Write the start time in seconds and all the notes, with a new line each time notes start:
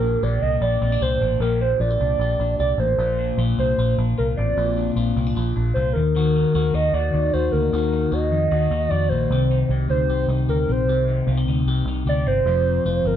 Already playing: A#1 A#2 G4 A#4
0.02 D4
0.23 A#1 G4 D5
0.42 C2 D4 D#5
0.61 A#1 G4 D5
0.81 A#1 C4
0.92 D4
1.01 C2 G4 C5
1.21 A1 A#3
1.40 A#1 A#2 G4 A#4
1.61 D4 C5
1.80 A#1 F4 D5
1.90 G4
2.00 C2 D4
2.19 A#1 G4
2.39 A#1 D4
2.59 C2 G4 D5
2.78 A1 A#3 C5
2.98 A#1 A#2 F4
3.19 D4
3.37 A#1 F4
3.58 C2 D4 C5
3.78 A#1 F4
3.98 A#1 D4
4.18 C2 F4 A#4
4.37 A1 C4 D5
4.57 A#1 A#2 F4
4.77 D4
4.96 A#1 F4
5.16 C2 C4
5.27 D4
5.36 A#1 F4
5.56 A#1 D4
5.74 C2 F4 C5
5.93 D#2 D#3 A#4
6.16 D#3 F#4
6.36 D#4
6.55 D#2 F#4
6.74 D#2 D#4 D#5
6.93 D#2 F#4 D5
7.14 D#2 D#4
7.33 D#2 F#4 C5
7.52 D2 A#3 A#4
7.73 D#2 D#3 F#4
7.92 D#4
8.12 D#2 F#4 D#5
8.32 F2 D#4
8.51 D#2 F#4
8.71 D#2 D#4
8.90 F2 F#4 D5
9.09 A#1 A#3 C5
9.30 C2 C3 G4
9.51 D#4
9.69 C2 G4
9.89 D2 D#4 C5
10.08 C2 G4
10.28 C2 D#4
10.48 D2 G4 A#4
10.68 A#1 C4 C5
10.87 C2 C3 G4
11.08 D#4
11.27 C2 F4
11.37 G4
11.46 D2 D#4
11.65 C2 G4
11.85 C2 D#4
12.06 D2 G4 D5
12.26 G1 C4 C5
12.45 F1 F2 F4
12.66 C4
12.85 F1 F4
13.05 G1 C4 A#4